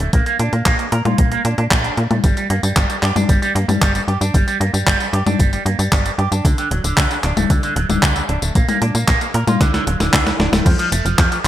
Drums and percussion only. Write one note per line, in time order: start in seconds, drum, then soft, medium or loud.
0.00 closed hi-hat soft
0.13 kick loud
0.13 closed hi-hat medium
0.26 closed hi-hat soft
0.39 closed hi-hat medium
0.53 closed hi-hat soft
0.66 kick loud
0.66 clap loud
0.66 closed hi-hat medium
0.79 closed hi-hat soft
0.92 closed hi-hat medium
1.05 closed hi-hat soft
1.05 high tom medium
1.18 kick loud
1.18 closed hi-hat medium
1.32 closed hi-hat soft
1.45 closed hi-hat medium
1.58 closed hi-hat soft
1.71 kick loud
1.71 clap loud
1.71 closed hi-hat medium
1.84 closed hi-hat soft
1.97 closed hi-hat soft
2.11 closed hi-hat soft
2.11 high tom medium
2.24 kick loud
2.24 closed hi-hat medium
2.24 tambourine soft
2.37 closed hi-hat soft
2.37 tambourine soft
2.50 closed hi-hat medium
2.63 closed hi-hat soft
2.63 tambourine medium
2.76 kick loud
2.76 clap loud
2.76 closed hi-hat medium
2.76 tambourine soft
2.90 closed hi-hat soft
2.90 tambourine soft
3.03 clap medium
3.03 closed hi-hat medium
3.16 closed hi-hat soft
3.16 high tom medium
3.16 tambourine medium
3.29 kick loud
3.29 closed hi-hat medium
3.29 tambourine soft
3.42 closed hi-hat soft
3.42 tambourine soft
3.56 closed hi-hat medium
3.69 closed hi-hat soft
3.69 high tom medium
3.69 tambourine medium
3.82 kick loud
3.82 clap loud
3.82 closed hi-hat medium
3.82 tambourine soft
3.95 closed hi-hat soft
3.95 tambourine soft
4.08 closed hi-hat soft
4.21 closed hi-hat soft
4.21 tambourine medium
4.34 kick loud
4.34 closed hi-hat medium
4.34 tambourine soft
4.48 closed hi-hat soft
4.48 tambourine soft
4.61 closed hi-hat medium
4.74 closed hi-hat soft
4.74 tambourine medium
4.87 kick loud
4.87 clap loud
4.87 closed hi-hat medium
4.87 tambourine soft
5.00 closed hi-hat soft
5.00 tambourine soft
5.13 closed hi-hat medium
5.27 closed hi-hat soft
5.27 high tom medium
5.27 tambourine medium
5.40 kick loud
5.40 closed hi-hat medium
5.40 tambourine soft
5.53 closed hi-hat soft
5.53 tambourine soft
5.66 closed hi-hat medium
5.79 closed hi-hat soft
5.79 tambourine medium
5.92 kick loud
5.92 clap loud
5.92 closed hi-hat medium
5.92 tambourine soft
6.06 closed hi-hat soft
6.06 tambourine soft
6.19 closed hi-hat soft
6.32 closed hi-hat soft
6.32 tambourine medium
6.45 kick loud
6.45 closed hi-hat medium
6.45 tambourine soft
6.58 closed hi-hat soft
6.58 tambourine soft
6.71 closed hi-hat medium
6.84 closed hi-hat soft
6.84 tambourine medium
6.97 kick loud
6.97 clap loud
6.97 closed hi-hat medium
6.97 tambourine medium
7.11 closed hi-hat soft
7.11 tambourine soft
7.24 clap medium
7.24 closed hi-hat medium
7.37 closed hi-hat soft
7.37 high tom medium
7.37 tambourine medium
7.50 kick loud
7.50 closed hi-hat medium
7.50 tambourine soft
7.63 closed hi-hat soft
7.63 tambourine soft
7.76 closed hi-hat medium
7.90 closed hi-hat soft
7.90 high tom medium
7.90 tambourine medium
8.03 kick loud
8.03 clap loud
8.03 closed hi-hat medium
8.03 tambourine soft
8.16 closed hi-hat soft
8.16 tambourine soft
8.29 closed hi-hat soft
8.42 closed hi-hat soft
8.42 tambourine medium
8.55 kick loud
8.55 closed hi-hat medium
8.55 tambourine soft
8.69 closed hi-hat soft
8.69 high tom medium
8.69 tambourine soft
8.82 closed hi-hat medium
8.95 closed hi-hat soft
8.95 tambourine medium
9.08 kick loud
9.08 clap loud
9.08 closed hi-hat loud
9.08 tambourine medium
9.21 closed hi-hat soft
9.21 tambourine soft
9.34 closed hi-hat medium
9.48 closed hi-hat soft
9.48 high tom medium
9.48 tambourine medium
9.61 kick loud
9.61 snare medium
9.61 closed hi-hat medium
9.61 tambourine medium
9.74 snare medium
9.74 closed hi-hat soft
9.74 tambourine soft
9.87 closed hi-hat medium
10.00 snare medium
10.00 closed hi-hat soft
10.00 tambourine medium
10.13 kick loud
10.13 snare medium
10.13 clap loud
10.13 closed hi-hat medium
10.13 tambourine medium
10.27 snare medium
10.27 closed hi-hat soft
10.27 tambourine soft
10.40 snare medium
10.40 closed hi-hat soft
10.53 snare medium
10.53 closed hi-hat soft
10.53 high tom medium
10.53 tambourine medium
10.66 kick loud
10.66 closed hi-hat medium
10.66 crash loud
10.66 tambourine soft
10.79 closed hi-hat soft
10.79 tambourine soft
10.92 closed hi-hat loud
10.92 tambourine medium
11.06 closed hi-hat soft
11.06 tambourine soft
11.19 kick loud
11.19 clap loud
11.19 closed hi-hat medium
11.19 tambourine soft
11.32 closed hi-hat soft
11.32 tambourine soft